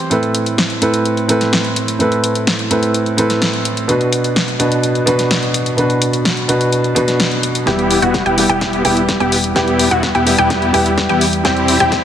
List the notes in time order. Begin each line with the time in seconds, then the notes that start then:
Already playing: E3 C4 E4 G4 C5
0.10 A2 C4 E4 A4 B4, closed hi-hat
0.23 closed hi-hat
0.35 closed hi-hat
0.46 closed hi-hat
0.58 snare, closed hi-hat
0.70 closed hi-hat
0.81 A2 C4 E4 A4 B4, closed hi-hat
0.94 closed hi-hat
1.05 closed hi-hat
1.17 closed hi-hat
1.28 A2 C4 E4 A4 B4, closed hi-hat
1.41 snare, closed hi-hat
1.53 snare, closed hi-hat
1.65 closed hi-hat
1.76 closed hi-hat
1.88 closed hi-hat
1.99 A2 C4 E4 A4 B4, closed hi-hat
2.12 closed hi-hat
2.24 closed hi-hat
2.35 closed hi-hat
2.47 snare, closed hi-hat
2.59 closed hi-hat
2.70 A2 C4 E4 A4 B4, closed hi-hat
2.83 closed hi-hat
2.94 closed hi-hat
3.06 closed hi-hat
3.17 A2 C4 E4 A4 B4, closed hi-hat
3.30 snare, closed hi-hat
3.42 snare, closed hi-hat
3.54 closed hi-hat
3.65 closed hi-hat
3.77 closed hi-hat
3.88 B2 B3 D4 F#4 B4, closed hi-hat
4.01 closed hi-hat
4.13 closed hi-hat
4.24 closed hi-hat
4.36 snare, closed hi-hat
4.48 closed hi-hat
4.59 B2 B3 D4 F#4 B4, closed hi-hat
4.72 closed hi-hat
4.83 closed hi-hat
4.95 closed hi-hat
5.06 B2 B3 D4 F#4 B4, closed hi-hat
5.19 snare, closed hi-hat
5.31 snare, closed hi-hat
5.43 closed hi-hat
5.54 closed hi-hat
5.66 closed hi-hat
5.77 B2 B3 D4 F#4 B4, closed hi-hat
5.90 closed hi-hat
6.02 closed hi-hat
6.13 closed hi-hat
6.25 snare, closed hi-hat
6.37 closed hi-hat
6.48 B2 B3 D4 F#4 B4, closed hi-hat
6.61 closed hi-hat
6.72 closed hi-hat
6.84 closed hi-hat
6.95 B2 B3 D4 F#4 B4, closed hi-hat
7.08 snare, closed hi-hat
7.20 snare, closed hi-hat
7.32 closed hi-hat
7.43 closed hi-hat
7.55 closed hi-hat
7.66 E1 G3 B3 E4 G4 G5, kick, snare, closed hi-hat
7.79 closed hi-hat
7.91 open hi-hat
8.02 E1 B3 E4 F#4 F#5, closed hi-hat
8.14 kick, snare, closed hi-hat
8.26 E1 B3 E4 G4 G5, closed hi-hat
8.37 G3 B3 E4 G4, open hi-hat
8.49 E1 B3 E4 G4 G5, closed hi-hat
8.61 kick, snare, closed hi-hat
8.73 closed hi-hat
8.84 E1 G3 B3 E4 G4 G5, open hi-hat
8.97 closed hi-hat
9.09 kick, snare, closed hi-hat
9.20 E1 B3 E4 G4 G5, closed hi-hat
9.32 open hi-hat
9.44 closed hi-hat
9.55 E1 G3 B3 E4 G4 G5, kick, snare, closed hi-hat
9.68 closed hi-hat
9.79 open hi-hat
9.91 E1 B3 E4 F#4 F#5, closed hi-hat
10.03 kick, snare, closed hi-hat
10.15 E1 B3 E4 G4 G5, closed hi-hat
10.26 G3 B3 E4 G4, open hi-hat
10.38 E1 B3 E4 G4 G5, closed hi-hat
10.50 kick, snare, closed hi-hat
10.62 closed hi-hat
10.73 E1 G3 B3 E4 G4 G5, open hi-hat
10.86 closed hi-hat
10.98 kick, snare, closed hi-hat
11.09 E2 B3 E4 G4 G5, closed hi-hat
11.21 open hi-hat
11.33 closed hi-hat
11.43 E1 G3 C4 E4 G4 G5, kick, snare, closed hi-hat
11.57 closed hi-hat
11.68 open hi-hat
11.80 E1 C4 E4 G4 G5, closed hi-hat
11.92 kick, snare, closed hi-hat